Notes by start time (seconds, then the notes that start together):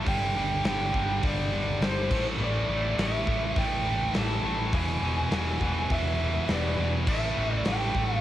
0.05 G1 G2 D3 G3 G5, kick, open hi-hat
0.35 G1 G2 D3 G3
0.64 G1 G2 D3 G3 G5, snare, open hi-hat
0.93 G1 G2 D3 G3, kick
1.23 G1 G2 D3 G3 D5, kick, open hi-hat
1.52 G2 D3 G3
1.81 G1 G2 D3 G3 C5, snare, open hi-hat
2.10 A1 A2 E3 A3, kick, crash
2.39 A1 A2 E3 A3 D5
2.68 A1 A2 E3 A3
2.97 A1 A2 E3 A3 E5, snare, open hi-hat
3.27 A1 A2 E3 A3, kick
3.56 A1 A2 E3 A3 G5, kick, open hi-hat
3.85 A2 E3 A3
4.13 A1 A2 E3 A3, snare, open hi-hat
4.18 A5
4.43 A1 A2 E3 A3
4.72 E1 E2 B2 E3 G#5, kick, open hi-hat
5.02 E1 E2 B2 E3
5.31 E1 E2 B2 E3 G#5, snare, open hi-hat
5.61 E1 E2 B2 E3, kick
5.90 E1 E2 B2 E3 E5, kick, open hi-hat
6.21 E2 B2 E3
6.48 E1 E2 B2 E3 D5, snare, open hi-hat
6.78 E1 E2 B2 E3
7.07 A1 A2 E3 A3 E5, kick, crash
7.37 A1 A2 E3 A3
7.54 D5
7.65 A1 A2 E3 A3 G5, snare, open hi-hat
7.95 A1 A2 E3 A3, kick
8.13 F5